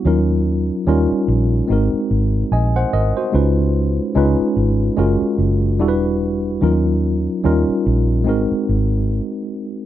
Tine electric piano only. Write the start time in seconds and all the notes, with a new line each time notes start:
0.05 F#3 C#4 D#4 F4 A#4
0.87 G3 C#4 D#4 F4 A#4
1.68 G#3 C4 D#4 F#4
1.72 A#4
2.52 D#5 G#5
2.76 C5 F#5
2.93 A#4 D#5
3.17 F#4 C5
3.33 G#3 C#4 D#4 F4 B4
4.15 G#3 C#4 D#4 F4 B4
4.97 G#3 C#4 F4 F#4 A#4
5.79 G3 D4 E4 F#4 A4
5.88 B4
6.61 F#3 C#4 D#4 F4 A#4
7.44 G3 C#4 D#4 F4 A#4
8.24 G#3 C4 D#4 F#4
8.29 A#4